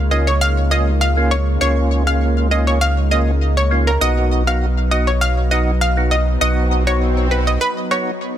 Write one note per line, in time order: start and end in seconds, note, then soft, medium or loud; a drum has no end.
0.00 1.57 C#2 medium
0.00 3.97 C#3 medium
0.00 3.97 G#3 medium
0.00 3.97 A#3 medium
0.00 8.38 D#4 medium
0.00 3.97 F4 medium
0.11 0.31 A#3 medium
0.11 0.31 C#4 medium
0.11 0.31 F4 medium
0.11 0.22 D#5 medium
0.27 0.37 C#5 medium
0.41 0.52 F5 loud
0.71 0.91 A#3 medium
0.71 0.91 C#4 medium
0.71 0.91 F4 medium
0.71 0.82 D#5 medium
1.01 1.12 F5 medium
1.17 1.36 A#3 medium
1.17 1.36 C#4 medium
1.17 1.36 F4 medium
1.31 1.42 C#5 medium
1.61 3.97 C#2 medium
1.61 2.03 A#3 medium
1.61 2.03 C#4 medium
1.61 2.04 F4 loud
1.61 1.72 C#5 medium
2.07 2.48 A#3 medium
2.07 2.48 C#4 medium
2.07 2.48 F4 medium
2.07 2.16 F5 medium
2.51 2.79 A#3 medium
2.51 2.79 C#4 medium
2.51 2.79 F4 medium
2.51 2.62 D#5 medium
2.67 2.77 C#5 medium
2.81 2.92 F5 medium
3.11 3.31 A#3 medium
3.11 3.31 C#4 medium
3.11 3.31 F4 medium
3.11 3.22 D#5 medium
3.57 3.67 C#5 medium
3.71 3.91 A#3 medium
3.71 3.91 C#4 medium
3.71 3.91 F4 medium
3.87 3.97 A#4 medium
4.01 6.37 B1 medium
4.01 8.38 F#3 medium
4.01 4.43 B3 medium
4.01 8.38 B3 medium
4.01 4.43 D#4 medium
4.01 4.43 F#4 loud
4.01 4.12 D#5 loud
4.01 swell medium
4.47 4.66 B3 medium
4.47 4.66 D#4 medium
4.47 4.66 F#4 medium
4.47 4.57 F5 medium
4.91 5.11 B3 medium
4.91 5.11 D#4 medium
4.91 5.11 F#4 medium
4.91 5.02 D#5 medium
5.07 5.17 C#5 medium
5.21 5.32 F5 medium
5.51 5.71 B3 medium
5.51 5.71 D#4 medium
5.51 5.71 F#4 medium
5.51 5.62 D#5 medium
5.81 5.92 F5 medium
5.97 6.16 B3 medium
5.97 6.16 D#4 medium
5.97 6.16 F#4 medium
6.11 6.22 D#5 medium
6.41 7.57 B1 medium
6.41 6.83 B3 medium
6.41 6.83 D#4 medium
6.41 6.84 F#4 loud
6.41 6.52 D#5 medium
6.87 7.28 B3 medium
6.87 7.28 D#4 medium
6.87 7.28 F#4 medium
6.87 6.97 C#5 medium
7.31 7.59 B3 medium
7.31 7.59 D#4 medium
7.31 7.59 F#4 medium
7.31 7.42 B4 medium
7.47 7.57 D#5 medium
7.61 7.72 B4 medium
7.91 8.11 B3 medium
7.91 8.11 D#4 medium
7.91 8.11 F#4 medium
7.91 8.02 C#5 medium